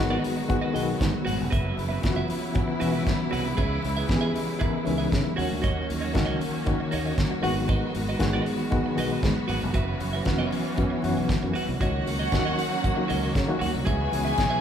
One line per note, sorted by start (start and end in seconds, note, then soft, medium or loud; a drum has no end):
0.00 0.17 G#1 medium
0.00 0.48 D#3 loud
0.00 1.48 D#3 medium
0.00 3.54 F#3 medium
0.00 0.49 G#3 medium
0.00 1.50 G#3 medium
0.00 1.53 A#3 medium
0.00 0.04 B3 medium
0.00 5.33 B3 medium
0.00 0.41 B3 loud
0.00 0.50 F#4 loud
0.00 1.48 F#4 medium
0.10 0.21 F#4 medium
0.10 0.22 B4 medium
0.10 0.23 D#5 medium
0.23 muted clean electric guitar stroke soft
0.23 open hi-hat medium
0.23 muted conga medium
0.37 muted clean electric guitar stroke soft
0.48 0.69 D#3 medium
0.48 0.69 G#3 medium
0.48 0.69 B3 medium
0.48 0.69 F#4 loud
0.48 muted clean electric guitar stroke soft
0.48 kick loud
0.48 closed hi-hat medium
0.48 muted conga soft
0.48 low conga medium
0.61 0.72 F#4 medium
0.61 0.73 B4 medium
0.61 0.73 D#5 medium
0.73 0.94 B1 medium
0.73 1.51 D#3 medium
0.73 1.52 G#3 medium
0.73 1.52 B3 medium
0.73 0.85 F#4 medium
0.73 1.52 F#4 medium
0.73 0.86 B4 medium
0.73 0.86 D#5 medium
0.73 open hi-hat medium
0.73 muted conga soft
0.87 muted clean electric guitar stroke soft
0.99 1.11 G#2 loud
0.99 muted clean electric guitar stroke soft
0.99 kick loud
0.99 snare loud
0.99 closed hi-hat medium
0.99 high conga medium
1.13 muted clean electric guitar stroke soft
1.13 high conga medium
1.25 1.37 G#1 medium
1.25 1.40 F#4 medium
1.25 1.38 B4 medium
1.25 1.37 F#5 medium
1.25 open hi-hat medium
1.25 high conga medium
1.38 1.49 F1 loud
1.38 muted clean electric guitar stroke soft
1.50 1.71 F#1 loud
1.50 5.34 C#3 medium
1.50 5.34 E3 medium
1.50 5.33 E4 medium
1.50 1.75 F#4 medium
1.50 1.75 B4 medium
1.50 1.76 E5 medium
1.50 kick loud
1.50 closed hi-hat medium
1.76 1.97 F#1 medium
1.76 muted clean electric guitar stroke soft
1.76 open hi-hat medium
1.76 muted conga medium
1.89 2.00 F#4 medium
1.89 2.01 B4 medium
1.89 2.00 E5 medium
2.02 2.23 F#1 medium
2.02 2.43 E3 medium
2.02 2.43 B3 medium
2.02 2.43 C#4 medium
2.02 2.10 F4 medium
2.02 muted clean electric guitar stroke soft
2.02 kick loud
2.02 snare loud
2.02 closed hi-hat medium
2.02 high conga medium
2.10 2.47 F#4 loud
2.16 2.27 F#4 medium
2.16 2.28 B4 medium
2.16 2.28 E5 loud
2.28 muted clean electric guitar stroke medium
2.28 open hi-hat medium
2.28 muted conga medium
2.42 muted clean electric guitar stroke soft
2.54 2.74 E3 medium
2.54 2.75 B3 medium
2.54 2.75 C#4 medium
2.54 2.75 F#4 medium
2.54 muted clean electric guitar stroke soft
2.54 kick loud
2.54 closed hi-hat medium
2.54 low conga medium
2.68 muted clean electric guitar stroke soft
2.79 3.00 E1 medium
2.79 3.57 E3 medium
2.79 3.57 B3 medium
2.79 3.57 C#4 medium
2.79 2.93 F#4 medium
2.79 3.58 F#4 medium
2.79 2.92 B4 medium
2.79 2.91 E5 medium
2.79 open hi-hat medium
2.79 muted conga medium
2.93 3.03 F#4 soft
2.93 3.04 B4 medium
2.93 3.04 E5 medium
3.04 muted clean electric guitar stroke soft
3.04 kick loud
3.04 snare loud
3.04 closed hi-hat medium
3.04 high conga medium
3.17 muted clean electric guitar stroke soft
3.31 3.51 C2 medium
3.31 3.46 F#4 medium
3.31 3.45 B4 medium
3.31 3.45 F#5 medium
3.31 open hi-hat medium
3.31 high conga medium
3.45 muted clean electric guitar stroke soft
3.57 3.77 C#2 loud
3.57 5.36 G#3 medium
3.57 3.81 G#4 medium
3.57 3.81 B4 medium
3.57 3.82 E5 medium
3.57 kick loud
3.57 closed hi-hat medium
3.83 4.03 C#2 medium
3.83 muted clean electric guitar stroke soft
3.83 open hi-hat medium
3.83 muted conga medium
3.97 4.07 G#4 medium
3.97 4.08 B4 medium
3.97 4.07 E5 medium
4.08 4.28 E2 medium
4.08 4.48 E3 loud
4.08 4.49 B3 medium
4.08 4.49 C#4 medium
4.08 4.16 G4 medium
4.08 muted clean electric guitar stroke soft
4.08 kick loud
4.08 snare loud
4.08 closed hi-hat medium
4.08 high conga medium
4.16 4.52 G#4 loud
4.21 4.32 G#4 medium
4.21 4.32 B4 medium
4.21 4.33 E5 medium
4.33 muted clean electric guitar stroke soft
4.33 open hi-hat medium
4.33 muted conga soft
4.47 muted clean electric guitar stroke soft
4.59 4.80 E3 medium
4.59 4.80 B3 medium
4.59 4.80 C#4 medium
4.59 4.74 G#4 medium
4.59 4.81 A#4 medium
4.59 4.73 B4 medium
4.59 4.72 E5 medium
4.59 kick loud
4.59 closed hi-hat medium
4.59 low conga medium
4.73 muted clean electric guitar stroke soft
4.85 5.05 C#2 medium
4.85 5.37 E3 medium
4.85 5.37 B3 medium
4.85 5.37 C#4 medium
4.85 4.93 D#4 medium
4.85 muted clean electric guitar stroke soft
4.85 open hi-hat medium
4.85 muted conga medium
4.93 5.41 E4 medium
4.98 5.09 G#4 soft
4.98 5.10 B4 soft
4.98 5.09 E5 medium
5.10 5.22 C#3 medium
5.10 muted clean electric guitar stroke soft
5.10 kick loud
5.10 snare loud
5.10 closed hi-hat medium
5.10 high conga medium
5.25 muted clean electric guitar stroke soft
5.25 high conga medium
5.36 5.48 D#2 medium
5.36 6.00 D#3 medium
5.36 9.71 D#3 medium
5.36 11.78 F#3 medium
5.36 6.00 A#3 medium
5.36 7.42 A#3 medium
5.36 6.00 C#4 medium
5.36 7.42 C#4 medium
5.36 5.51 F#4 medium
5.36 6.00 F#4 loud
5.36 11.78 F#4 medium
5.36 5.50 C#5 medium
5.36 5.50 F#5 medium
5.36 open hi-hat medium
5.36 high conga medium
5.50 5.61 D2 loud
5.50 muted clean electric guitar stroke soft
5.62 5.82 D#2 loud
5.62 5.86 F#4 medium
5.62 5.87 C#5 medium
5.62 5.87 D#5 medium
5.62 kick loud
5.62 closed hi-hat medium
5.87 6.16 D#2 medium
5.87 muted clean electric guitar stroke soft
5.87 open hi-hat medium
5.87 muted conga medium
6.01 6.12 F#4 soft
6.01 6.12 C#5 medium
6.01 6.12 D#5 medium
6.13 6.34 C#2 medium
6.13 6.54 D#3 loud
6.13 6.54 A#3 medium
6.13 6.55 C#4 medium
6.13 6.55 F#4 loud
6.13 muted clean electric guitar stroke soft
6.13 kick loud
6.13 snare loud
6.13 closed hi-hat medium
6.13 high conga medium
6.25 6.38 F#4 medium
6.25 6.38 C#5 medium
6.25 6.39 D#5 medium
6.41 open hi-hat medium
6.41 muted conga medium
6.53 muted clean electric guitar stroke soft
6.65 6.86 D#3 medium
6.65 6.86 A#3 medium
6.65 6.87 C#4 medium
6.65 6.87 F#4 medium
6.65 muted clean electric guitar stroke soft
6.65 kick loud
6.65 closed hi-hat medium
6.65 low conga medium
6.80 muted clean electric guitar stroke soft
6.91 7.12 D#2 medium
6.91 7.06 F#4 medium
6.91 7.16 C#5 medium
6.91 7.06 C#5 medium
6.91 7.05 D#5 medium
6.91 open hi-hat medium
6.91 muted conga soft
7.06 7.17 F#4 soft
7.06 7.17 C#5 medium
7.06 7.16 D#5 medium
7.17 7.30 C#4 medium
7.17 7.30 A#4 medium
7.17 muted clean electric guitar stroke soft
7.17 kick loud
7.17 snare loud
7.17 closed hi-hat medium
7.17 high conga medium
7.31 7.56 A#3 medium
7.31 7.42 F#4 medium
7.31 muted clean electric guitar stroke medium
7.31 high conga medium
7.42 7.82 G#1 medium
7.42 8.05 D#3 medium
7.42 8.05 G#3 medium
7.42 9.73 G#3 medium
7.42 8.06 B3 medium
7.42 11.78 B3 medium
7.42 7.58 F#4 medium
7.42 8.06 F#4 loud
7.42 7.57 B4 medium
7.42 7.57 F#5 loud
7.42 open hi-hat medium
7.42 high conga medium
7.58 muted clean electric guitar stroke soft
7.68 7.92 F#4 medium
7.68 7.93 B4 medium
7.68 7.93 D#5 medium
7.68 kick loud
7.68 closed hi-hat medium
7.95 8.14 G#1 medium
7.95 muted clean electric guitar stroke soft
7.95 open hi-hat medium
7.95 muted conga medium
8.09 8.19 F#4 soft
8.09 8.19 B4 medium
8.09 8.19 D#5 medium
8.19 8.39 G#1 medium
8.19 8.60 D#3 loud
8.19 8.60 G#3 medium
8.19 8.60 B3 medium
8.19 8.61 F#4 loud
8.19 muted clean electric guitar stroke soft
8.19 kick loud
8.19 snare loud
8.19 closed hi-hat medium
8.19 high conga medium
8.33 8.44 F#4 medium
8.33 8.44 B4 medium
8.33 8.45 D#5 medium
8.46 muted clean electric guitar stroke medium
8.46 open hi-hat medium
8.46 muted conga soft
8.60 muted clean electric guitar stroke soft
8.71 8.91 D#3 medium
8.71 8.92 G#3 medium
8.71 8.92 B3 medium
8.71 8.92 F#4 medium
8.71 muted clean electric guitar stroke soft
8.71 kick loud
8.71 closed hi-hat medium
8.71 muted conga soft
8.71 low conga medium
8.86 muted clean electric guitar stroke soft
8.95 9.16 B1 medium
8.95 9.74 D#3 medium
8.95 9.74 G#3 medium
8.95 9.74 B3 medium
8.95 9.75 F#4 medium
8.95 9.12 F#4 medium
8.95 9.11 B4 medium
8.95 open hi-hat medium
8.95 muted conga soft
9.00 9.10 D#5 medium
9.12 9.22 F#4 medium
9.12 9.22 B4 soft
9.12 9.22 D#5 medium
9.23 9.33 G#2 loud
9.23 muted clean electric guitar stroke soft
9.23 kick loud
9.23 snare loud
9.23 closed hi-hat medium
9.23 high conga medium
9.36 muted clean electric guitar stroke soft
9.36 high conga medium
9.48 9.59 G#1 medium
9.48 9.63 F#4 medium
9.48 9.62 B4 medium
9.48 9.61 F#5 medium
9.48 open hi-hat medium
9.48 high conga medium
9.61 9.72 F1 loud
9.61 muted clean electric guitar stroke soft
9.74 9.93 F#1 loud
9.74 11.79 E3 medium
9.74 11.79 C#4 medium
9.74 9.98 F#4 medium
9.74 9.99 B4 medium
9.74 9.99 E5 medium
9.74 kick loud
9.74 closed hi-hat medium
10.00 10.20 F#1 medium
10.00 muted clean electric guitar stroke soft
10.00 open hi-hat medium
10.00 muted conga medium
10.13 10.24 F#4 medium
10.13 10.24 B4 medium
10.13 10.24 E5 medium
10.25 10.45 F#1 medium
10.25 10.66 E3 medium
10.25 10.33 A#3 medium
10.25 10.66 C#4 medium
10.25 10.67 F#4 loud
10.25 muted clean electric guitar stroke soft
10.25 kick medium
10.25 snare loud
10.25 closed hi-hat medium
10.25 high conga medium
10.32 10.69 B3 loud
10.38 10.50 F#4 medium
10.38 10.51 B4 medium
10.38 10.51 E5 medium
10.51 muted clean electric guitar stroke soft
10.51 open hi-hat medium
10.51 muted conga medium
10.65 muted clean electric guitar stroke soft
10.76 10.88 F#2 medium
10.76 10.97 E3 medium
10.76 10.98 B3 medium
10.76 10.98 C#4 medium
10.76 10.98 F#4 medium
10.76 muted clean electric guitar stroke soft
10.76 kick medium
10.76 closed hi-hat medium
10.90 muted clean electric guitar stroke soft
11.02 11.14 F#2 medium
11.02 11.80 E3 medium
11.02 11.81 B3 medium
11.02 11.80 C#4 medium
11.02 11.80 F#4 medium
11.02 open hi-hat medium
11.02 muted conga medium
11.17 11.26 B1 medium
11.17 muted clean electric guitar stroke soft
11.29 muted clean electric guitar stroke soft
11.29 kick loud
11.29 snare loud
11.29 closed hi-hat medium
11.29 high conga medium
11.42 11.52 F#2 medium
11.42 muted clean electric guitar stroke soft
11.42 high conga medium
11.53 11.69 F#4 medium
11.53 11.68 B4 medium
11.53 11.68 F#5 medium
11.53 open hi-hat medium
11.53 high conga medium
11.68 11.78 C2 loud
11.68 muted clean electric guitar stroke soft
11.80 12.00 C#2 medium
11.80 12.21 D#3 medium
11.80 13.85 D#3 medium
11.80 13.85 F#3 medium
11.80 12.21 A#3 medium
11.80 13.85 A#3 medium
11.80 12.21 C#4 medium
11.80 13.85 C#4 medium
11.80 13.58 F#4 medium
11.80 12.05 F#4 medium
11.80 12.21 F#4 medium
11.80 14.61 F#4 medium
11.80 12.05 C#5 medium
11.80 12.06 D#5 medium
11.80 13.57 F#5 loud
11.80 kick loud
11.80 closed hi-hat medium
12.07 12.25 C#2 medium
12.07 muted clean electric guitar stroke soft
12.07 open hi-hat medium
12.07 muted conga medium
12.19 12.31 F#4 soft
12.19 12.31 C#5 soft
12.19 12.30 D#5 medium
12.31 12.51 D#2 medium
12.31 12.81 D#3 medium
12.31 12.81 A#3 medium
12.31 12.82 C#4 loud
12.31 12.82 F#4 loud
12.31 muted clean electric guitar stroke soft
12.31 kick loud
12.31 snare loud
12.31 closed hi-hat medium
12.31 high conga medium
12.45 12.57 F#4 medium
12.45 12.57 C#5 medium
12.45 12.58 D#5 medium
12.58 muted clean electric guitar stroke soft
12.58 open hi-hat medium
12.58 muted conga medium
12.72 muted clean electric guitar stroke soft
12.83 muted clean electric guitar stroke soft
12.83 kick loud
12.83 closed hi-hat medium
12.83 muted conga soft
12.83 low conga medium
12.96 13.36 D#3 medium
12.96 13.36 A#3 medium
12.96 13.36 C#4 medium
12.96 13.37 F#4 loud
12.96 muted clean electric guitar stroke soft
13.08 13.29 C#2 medium
13.08 13.23 F#4 medium
13.08 13.22 C#5 medium
13.08 13.21 D#5 medium
13.08 open hi-hat medium
13.08 muted conga soft
13.22 13.34 F#4 soft
13.22 13.33 C#5 medium
13.22 13.33 D#5 medium
13.35 13.46 C#3 loud
13.35 muted clean electric guitar stroke soft
13.35 kick loud
13.35 snare medium
13.35 closed hi-hat medium
13.35 high conga medium
13.47 13.86 D#3 medium
13.47 13.87 A#3 medium
13.47 13.87 C#4 medium
13.47 13.87 F#4 medium
13.47 muted clean electric guitar stroke soft
13.59 13.72 D#2 medium
13.59 13.75 F#4 medium
13.59 13.74 C#5 medium
13.59 13.73 F#5 medium
13.59 open hi-hat medium
13.59 high conga medium
13.73 13.84 C2 medium
13.73 muted clean electric guitar stroke medium
13.85 14.06 C#2 loud
13.85 14.61 E3 medium
13.85 14.61 G#3 medium
13.85 14.61 B3 medium
13.85 14.61 C#4 medium
13.85 14.10 G#4 medium
13.85 14.61 G#4 medium
13.85 14.10 B4 medium
13.85 14.11 E5 medium
13.85 14.61 G#5 medium
13.85 kick loud
13.85 closed hi-hat medium
14.11 14.32 C#2 medium
14.11 14.52 E3 medium
14.11 14.53 G#3 medium
14.11 14.53 B3 medium
14.11 14.53 F#4 medium
14.11 muted clean electric guitar stroke soft
14.11 open hi-hat medium
14.11 muted conga medium
14.25 14.37 G#4 soft
14.25 14.36 B4 medium
14.25 14.36 E5 medium
14.38 14.57 B1 medium
14.38 muted clean electric guitar stroke soft
14.38 kick loud
14.38 snare loud
14.38 closed hi-hat medium
14.38 high conga medium
14.50 14.61 G#4 medium
14.50 14.61 B4 medium
14.50 14.61 E5 medium